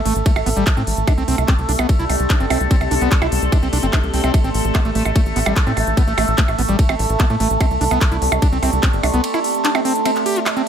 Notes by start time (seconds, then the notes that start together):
Already playing: A3 A4 E5 A5
0.05 A1 A3, open hi-hat
0.16 A1, closed hi-hat
0.26 A3, kick, closed hi-hat, ride
0.36 A1, closed hi-hat, percussion blips
0.46 A1 B3, open hi-hat
0.56 A1 G3, closed hi-hat
0.67 kick, clap, closed hi-hat, ride, percussion blips
0.77 A2 C4, closed hi-hat
0.87 A1, open hi-hat
0.97 A1, closed hi-hat
1.07 C4 D4, kick, closed hi-hat, ride, percussion blips
1.18 C2 C4, closed hi-hat
1.25 C2 C4 G4, open hi-hat
1.38 C2, closed hi-hat, percussion blips
1.48 C4 D5, kick, clap, closed hi-hat, ride
1.58 C2, closed hi-hat
1.69 C2 D4, open hi-hat
1.74 C6
1.79 C2 B3, percussion blips
1.89 kick, closed hi-hat, ride
1.99 C2 E4, closed hi-hat
2.10 C2, open hi-hat, percussion blips
2.20 C2, closed hi-hat
2.30 D4, kick, clap, closed hi-hat, ride
2.40 G1 C4, closed hi-hat
2.50 C2 C4, open hi-hat, percussion blips
2.61 C2, closed hi-hat
2.71 C4, kick, closed hi-hat, ride
2.81 C2, closed hi-hat, percussion blips
2.91 C2 D4, open hi-hat
3.01 C2 B3, closed hi-hat
3.12 kick, clap, closed hi-hat, ride
3.22 C2 E4, closed hi-hat, percussion blips
3.32 C2, open hi-hat
3.42 C2, closed hi-hat
3.52 D4, kick, closed hi-hat, ride, percussion blips
3.63 C2 C4, closed hi-hat
3.73 C2 D4, open hi-hat
3.83 G1 C4, closed hi-hat
3.93 D4, kick, clap, closed hi-hat, ride, percussion blips
4.03 C2, closed hi-hat
4.14 C2 C4, open hi-hat
4.24 C2 C4, closed hi-hat, percussion blips
4.34 A4, kick, closed hi-hat, ride, percussion blips
4.44 A1 C4, closed hi-hat
4.54 A1, open hi-hat
4.63 A1 E5, closed hi-hat
4.75 B3, kick, clap, closed hi-hat, ride, percussion blips
4.85 A1 A3, closed hi-hat
4.95 A1 A3, open hi-hat
5.05 A1, closed hi-hat, percussion blips
5.16 A3, kick, closed hi-hat, ride
5.26 A1, closed hi-hat
5.36 A1 B3, open hi-hat
5.46 A1 G3 A5, percussion blips
5.56 kick, clap, closed hi-hat, ride
5.67 A2 C4, closed hi-hat
5.77 A1, open hi-hat, percussion blips
5.87 A1, closed hi-hat
5.97 B3, kick, closed hi-hat, ride
6.07 A1 A3, closed hi-hat
6.18 A1 A3, open hi-hat, percussion blips
6.28 A1, closed hi-hat
6.38 A3, kick, clap, closed hi-hat, ride
6.48 A1, closed hi-hat, percussion blips
6.58 A1 B3, open hi-hat
6.69 A1 G3, closed hi-hat
6.79 kick, closed hi-hat, ride
6.89 A1 C4, closed hi-hat, percussion blips
6.99 A1, open hi-hat
7.09 A1, closed hi-hat
7.20 B3, kick, clap, closed hi-hat, ride, percussion blips
7.30 A2 A3, closed hi-hat
7.40 A1 A3, open hi-hat
7.50 A1, closed hi-hat
7.60 C4, kick, closed hi-hat, ride, percussion blips
7.71 C2, closed hi-hat
7.81 C2 D4, open hi-hat
7.85 D5
7.91 C2 B3, closed hi-hat, percussion blips
8.01 kick, clap, closed hi-hat, ride
8.06 G4
8.12 C2 E4, closed hi-hat
8.22 C2, open hi-hat
8.32 C2, closed hi-hat, percussion blips
8.40 D4 C6, kick, closed hi-hat, ride
8.52 C2 C4, closed hi-hat
8.63 C2 C4, open hi-hat, percussion blips
8.73 C2, closed hi-hat
8.83 C4, kick, clap, closed hi-hat, ride
8.93 G1, closed hi-hat
9.03 C2 D4, open hi-hat, percussion blips
9.14 C2 B3, closed hi-hat
9.24 closed hi-hat, ride
9.34 E4, closed hi-hat, percussion blips
9.44 open hi-hat
9.54 closed hi-hat
9.65 D4, clap, closed hi-hat, ride
9.75 C4, closed hi-hat, percussion blips
9.85 C4, open hi-hat
9.95 closed hi-hat
10.05 C4, closed hi-hat, ride, percussion blips
10.16 clap, closed hi-hat
10.26 G4, open hi-hat
10.36 E4, closed hi-hat
10.46 clap, closed hi-hat, ride, percussion blips
10.57 C4, closed hi-hat